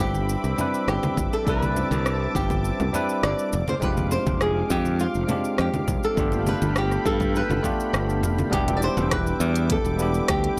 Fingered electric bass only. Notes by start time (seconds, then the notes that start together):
0.00 G1
0.44 C2
0.88 G1
1.17 G1
1.47 C2
1.91 C2
2.35 G1
2.80 C2
3.23 G1
3.53 F1
3.82 F1
4.27 F1
4.70 F2
5.15 F1
5.59 F2
5.88 C2
6.17 G1
6.62 G1
7.06 G2
7.50 G1
7.93 G1
8.23 F1
8.52 E1
8.97 E1
9.40 E2
9.84 E1
10.29 D2